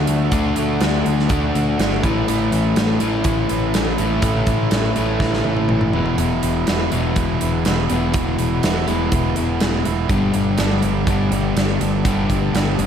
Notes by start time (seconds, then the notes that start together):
Already playing: D3 A3 D4
0.07 D2 A3 D4 F#4, closed hi-hat
0.31 D2 D3 A3 D4 F#4, kick, closed hi-hat
0.56 D2 A3 D4 F#4, closed hi-hat
0.80 D2 D3 A3 D4 F#4, snare, closed hi-hat
1.05 D2 D3 A3 D4 F#4, closed hi-hat
1.19 snare
1.29 D2 D3 A3 D4 F#4, kick, closed hi-hat
1.54 D2 A3 D4 F#4, closed hi-hat
1.78 G1 D3 A3 D4 F#4, snare, closed hi-hat
2.02 A1 A2 E3 A3 C#4 E4, kick, closed hi-hat
2.27 A1 A2 E3 A3 C#4 E4, closed hi-hat
2.51 A1 A3 C#4 E4, closed hi-hat
2.76 A1 E3 A3 C#4 E4, snare, closed hi-hat
3.00 A1 A2 E3 A3 C#4 E4, closed hi-hat
3.24 A1 E3 A3 C#4 E4, kick, closed hi-hat
3.49 A1 A3 C#4 E4, closed hi-hat
3.73 A1 A2 E3 A3 C#4 E4, snare, closed hi-hat
3.98 A1 A2 E3 A3 C#4 E4, closed hi-hat
4.22 A1 A2 E3 A3 C#4 E4, kick, closed hi-hat
4.46 A1 A3 C#4 E4, kick, closed hi-hat
4.71 A1 E3 A3 C#4 E4, snare, closed hi-hat
4.96 A1 A2 E3 A3 C#4 E4, closed hi-hat
5.20 A1 E3 A3 C#4, kick, snare
5.24 E4
5.34 snare
5.44 A1 A3 C#4 E4, high tom
5.57 high tom
5.69 A1 A2 E3 A3 C#4 E4, mid tom
5.81 mid tom
5.93 E1 E2 B2 E3 G#3 B3 E4, floor tom
6.06 floor tom
6.18 E1 E2 B2 E3 G#3 B3 E4, closed hi-hat
6.43 E1 E3 G#3 B3 E4, closed hi-hat
6.66 E1 E3 G#3 B3 E4, snare, closed hi-hat
6.92 E1 E2 B2 E3 G#3 B3 E4, closed hi-hat
7.16 E1 E3 G#3 B3 E4, kick, closed hi-hat
7.41 E1 E3 G#3 B3 E4, closed hi-hat
7.65 E1 E2 B2 E3 G#3 B3 E4, snare, closed hi-hat
7.89 E1 E2 B2 E3 G#3 B3 E4, closed hi-hat
8.13 E1 E2 B2 E3 G#3 B3 E4, kick, closed hi-hat
8.38 E1 E3 G#3 B3 E4, closed hi-hat
8.62 E1 E3 G#3 B3 E4, snare, closed hi-hat
8.87 E1 E2 B2 E3 G#3 B3 E4, closed hi-hat
9.12 E1 E3 G#3 B3 E4, kick, closed hi-hat
9.36 E1 E3 G#3 B3 E4, closed hi-hat
9.60 E1 E2 B2 E3 G#3 B3 E4, snare, closed hi-hat
9.85 E1 E3 G#3 B3 E4, closed hi-hat
10.09 G1 G2 D3 G3 B3 D4 G4, kick, closed hi-hat
10.33 G1 G3 B3 D4 G4, closed hi-hat
10.57 G1 G3 B3 D4 G4, snare, closed hi-hat
10.82 G1 G2 D3 G3 B3 D4 G4, closed hi-hat
11.06 G1 G2 D3 G3 B3 D4 G4, kick, closed hi-hat
11.31 G1 G3 B3 D4 G4, closed hi-hat
11.56 G1 G2 D3 G3 B3 D4 G4, snare, closed hi-hat
11.80 G1 G3 B3 D4 G4, closed hi-hat
12.04 G1 G2 D3 G3 B3 D4 G4, kick, closed hi-hat
12.29 G1 G3 B3 D4 G4, kick, closed hi-hat
12.53 G1 G3 B3 D4 G4, snare, closed hi-hat
12.78 G1 G2 D3 G3 B3 D4 G4, closed hi-hat